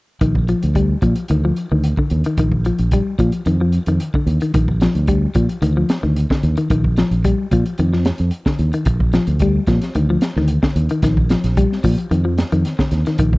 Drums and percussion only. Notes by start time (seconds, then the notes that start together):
0.21 kick, closed hi-hat
0.35 kick
0.48 closed hi-hat
0.63 closed hi-hat
0.75 kick, closed hi-hat
1.02 kick, closed hi-hat
1.16 closed hi-hat
1.28 closed hi-hat
1.56 closed hi-hat
1.84 closed hi-hat
1.97 kick
2.10 closed hi-hat
2.24 closed hi-hat
2.37 kick, closed hi-hat
2.52 kick
2.65 closed hi-hat
2.78 closed hi-hat
2.91 kick, closed hi-hat
3.19 kick, closed hi-hat
3.32 closed hi-hat
3.46 closed hi-hat
3.72 closed hi-hat
3.86 closed hi-hat
4.00 closed hi-hat
4.14 kick
4.27 closed hi-hat
4.41 closed hi-hat
4.54 kick, closed hi-hat
4.68 kick
4.81 snare, closed hi-hat
4.95 closed hi-hat
5.07 kick, closed hi-hat
5.34 kick, closed hi-hat
5.49 closed hi-hat
5.62 closed hi-hat
5.89 snare, closed hi-hat
6.16 closed hi-hat
6.30 kick, snare
6.43 closed hi-hat
6.57 closed hi-hat
6.70 kick, closed hi-hat
6.84 kick
6.97 snare, closed hi-hat
7.11 closed hi-hat
7.24 kick, closed hi-hat
7.51 kick, closed hi-hat
7.66 closed hi-hat
7.78 closed hi-hat
7.93 snare
8.05 snare, closed hi-hat
8.18 closed hi-hat
8.31 closed hi-hat
8.46 kick, snare
8.59 closed hi-hat
8.73 closed hi-hat
8.85 kick, closed hi-hat
9.00 kick
9.13 snare, closed hi-hat
9.27 closed hi-hat
9.39 kick, closed hi-hat
9.67 kick, snare, closed hi-hat
9.82 snare, closed hi-hat
9.95 closed hi-hat
10.21 snare, closed hi-hat
10.36 snare
10.48 closed hi-hat
10.63 kick, snare
10.76 closed hi-hat
10.89 closed hi-hat
11.02 kick, snare, closed hi-hat
11.17 kick
11.29 snare, closed hi-hat
11.44 snare, closed hi-hat
11.57 kick, closed hi-hat
11.72 snare
11.83 kick, open hi-hat
11.98 closed hi-hat
12.11 closed hi-hat
12.38 snare, closed hi-hat
12.52 closed hi-hat
12.65 snare, closed hi-hat
12.79 kick, snare
12.91 snare, closed hi-hat
13.06 snare, closed hi-hat
13.18 kick, closed hi-hat
13.33 kick